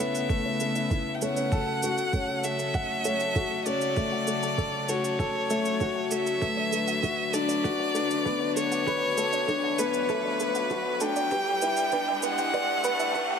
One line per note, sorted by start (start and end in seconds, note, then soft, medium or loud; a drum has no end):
0.00 6.38 C#3 medium
0.00 11.27 A3 medium
0.00 1.48 B3 medium
0.00 1.53 B3 medium
0.00 1.22 C#4 medium
0.00 1.48 E4 medium
0.00 1.53 A4 medium
0.00 1.54 B4 medium
0.00 1.16 E5 loud
0.15 shaker soft
0.29 0.59 A3 medium
0.29 0.37 A4 medium
0.29 kick loud
0.29 shaker soft
0.46 0.53 C#5 medium
0.60 0.72 A4 medium
0.60 shaker medium
0.75 0.80 E5 medium
0.75 shaker soft
0.91 1.09 E4 medium
0.91 0.96 A4 medium
0.91 kick loud
0.91 shaker soft
1.15 1.23 G5 medium
1.22 1.51 C#4 medium
1.22 1.30 A4 medium
1.22 2.46 F#5 loud
1.22 shaker medium
1.37 1.45 C#5 medium
1.37 shaker soft
1.52 11.28 F#3 medium
1.52 6.38 A4 medium
1.52 1.81 A4 medium
1.52 1.64 A4 medium
1.52 kick loud
1.52 shaker soft
1.67 1.72 A5 medium
1.83 2.12 F#4 medium
1.83 1.88 A4 medium
1.83 shaker medium
1.98 shaker soft
2.13 2.43 C#4 medium
2.13 2.21 A4 loud
2.13 kick loud
2.13 shaker soft
2.29 2.37 F#5 medium
2.44 2.56 A4 medium
2.44 3.68 E5 loud
2.44 shaker medium
2.59 2.64 A5 medium
2.59 shaker soft
2.74 2.79 A4 medium
2.74 2.92 F#5 medium
2.74 kick loud
2.74 shaker soft
3.05 3.13 A4 loud
3.05 3.34 C#5 medium
3.05 shaker medium
3.20 3.28 F#5 medium
3.20 shaker soft
3.35 3.65 F#4 medium
3.35 3.47 A4 medium
3.35 kick loud
3.35 shaker soft
3.51 3.56 A5 medium
3.66 3.96 C#4 medium
3.66 3.71 A4 medium
3.66 4.90 D5 loud
3.66 shaker medium
3.81 shaker soft
3.96 4.26 A3 medium
3.96 4.05 A4 medium
3.96 kick loud
3.96 shaker soft
4.12 4.20 F#5 medium
4.27 4.39 A4 medium
4.27 shaker medium
4.43 4.48 A5 medium
4.43 shaker soft
4.58 4.63 A4 medium
4.58 4.76 A4 medium
4.58 kick loud
4.58 shaker soft
4.88 5.18 F#4 medium
4.88 4.97 A4 medium
4.88 6.13 C#5 loud
4.88 shaker medium
5.04 5.12 F#5 medium
5.04 shaker soft
5.19 5.31 A4 medium
5.19 5.49 A4 medium
5.19 kick loud
5.19 shaker soft
5.35 5.39 A5 medium
5.50 5.68 A3 loud
5.50 5.55 A4 medium
5.50 shaker medium
5.65 shaker soft
5.80 6.10 F#4 medium
5.80 5.88 A4 medium
5.80 kick medium
5.80 shaker soft
5.96 6.04 F#5 medium
6.11 6.23 A4 medium
6.11 7.35 E5 loud
6.11 shaker medium
6.27 6.31 A5 medium
6.27 shaker soft
6.41 13.39 D3 medium
6.41 6.71 A3 medium
6.41 6.50 A4 medium
6.41 13.39 B4 medium
6.41 kick medium
6.41 riser medium
6.41 shaker soft
6.57 6.65 D5 medium
6.72 6.84 A4 medium
6.72 shaker medium
6.88 6.92 F#5 medium
6.88 shaker soft
7.03 7.21 F#4 medium
7.03 7.08 A4 medium
7.03 kick loud
7.03 shaker soft
7.33 7.63 D4 medium
7.33 7.41 A4 loud
7.33 8.56 D5 loud
7.33 shaker medium
7.48 7.56 D5 medium
7.48 shaker soft
7.64 7.94 F#4 medium
7.64 7.76 A4 medium
7.64 kick loud
7.64 shaker soft
7.79 7.84 F#5 medium
7.95 8.24 D4 medium
7.95 7.99 A4 medium
7.95 shaker medium
8.11 shaker soft
8.26 8.55 B3 medium
8.26 8.33 A4 medium
8.26 kick loud
8.26 shaker soft
8.41 8.48 D5 medium
8.56 8.68 A4 medium
8.56 9.80 C#5 loud
8.56 shaker medium
8.72 8.76 F#5 medium
8.72 shaker soft
8.87 8.92 A4 medium
8.87 9.04 B4 medium
8.87 kick loud
8.87 shaker soft
9.17 9.25 A4 medium
9.17 9.47 A4 medium
9.17 shaker medium
9.33 9.40 D5 medium
9.33 shaker soft
9.48 9.77 D4 medium
9.48 9.60 A4 medium
9.48 kick loud
9.48 shaker soft
9.64 9.68 F#5 medium
9.78 10.08 B3 medium
9.78 9.83 A4 medium
9.78 11.02 B4 loud
9.78 shaker medium
9.94 shaker soft
10.09 10.38 A3 medium
10.09 10.17 A4 loud
10.09 kick medium
10.09 shaker soft
10.25 10.32 D5 medium
10.40 10.52 A4 medium
10.40 shaker medium
10.55 10.60 F#5 medium
10.55 shaker soft
10.70 10.88 F#4 medium
10.70 10.75 A4 medium
10.70 kick loud
10.70 shaker soft
11.01 11.30 D4 medium
11.01 11.09 A4 loud
11.01 12.25 G5 loud
11.01 shaker medium
11.16 11.24 D5 medium
11.16 shaker soft
11.31 13.39 G3 medium
11.31 13.39 E4 medium
11.31 11.61 G4 medium
11.31 11.43 B4 medium
11.31 kick loud
11.31 shaker soft
11.47 11.52 G5 medium
11.62 11.91 E4 medium
11.62 11.67 B4 medium
11.62 shaker medium
11.77 shaker soft
11.92 12.22 D4 medium
11.92 12.01 B4 loud
11.92 kick loud
11.92 shaker soft
12.08 12.16 E5 medium
12.23 12.35 B4 medium
12.23 13.39 F#5 loud
12.23 shaker medium
12.38 12.43 G5 medium
12.38 shaker soft
12.54 12.58 B4 medium
12.54 12.72 D5 loud
12.54 kick loud
12.54 shaker soft
12.84 12.92 B4 loud
12.84 13.14 B4 medium
12.84 shaker medium
12.99 13.07 E5 medium
12.99 shaker soft
13.15 13.39 E4 medium
13.15 13.27 B4 medium
13.15 kick loud
13.15 shaker soft
13.31 13.35 G5 medium